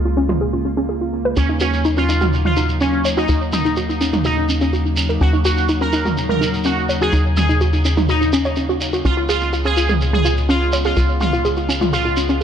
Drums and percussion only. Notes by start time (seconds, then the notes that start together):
0.29 mid tom
1.37 shekere
1.60 shekere
1.74 shekere
1.85 shekere
1.97 shekere
2.09 shekere
2.21 mid tom, shekere
2.33 shekere
2.45 mid tom
2.56 shekere
2.69 shekere
2.81 shekere
3.05 shekere
3.17 shekere
3.28 shekere
3.53 mid tom, shekere
3.65 shekere
3.76 shekere
3.90 shekere
4.01 shekere
4.13 mid tom, shekere
4.25 shekere
4.49 shekere
4.61 shekere
4.73 shekere
4.97 shekere
5.09 shekere
5.21 shekere
5.45 shekere
5.57 shekere
5.69 shekere
5.81 shekere
5.92 shekere
6.05 mid tom, shekere
6.17 shekere
6.29 mid tom
6.42 shekere
6.54 shekere
6.64 shekere
6.89 shekere
7.02 shekere
7.13 shekere
7.37 mid tom, shekere
7.49 shekere
7.61 shekere
7.73 shekere
7.85 shekere
7.97 mid tom, shekere
8.09 shekere
8.22 shekere
8.33 shekere
8.45 shekere
8.56 shekere
8.81 shekere
8.93 shekere
9.05 shekere
9.29 shekere
9.41 shekere
9.53 shekere
9.65 shekere
9.77 shekere
9.89 mid tom, shekere
10.01 shekere
10.13 mid tom
10.25 shekere
10.37 shekere
10.50 shekere
10.73 shekere
10.85 shekere
10.97 shekere
11.21 mid tom, shekere
11.33 shekere
11.45 shekere
11.56 shekere
11.70 shekere
11.81 mid tom, shekere
11.93 shekere
12.17 shekere
12.29 shekere